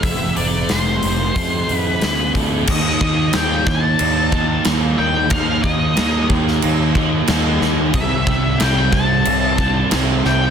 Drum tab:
CC |----------------|x---x---x---x---|x---x---x---x---|x---x---x---x---|
HH |o-o-o-o-o-o-o-o-|----------------|----------------|----------------|
SD |----o-------o---|----o-------o---|----o--o----o-o-|----o-------o-o-|
BD |o-------o-----o-|o-o---o---o-----|o-o---o---o-----|o-o---o---o-----|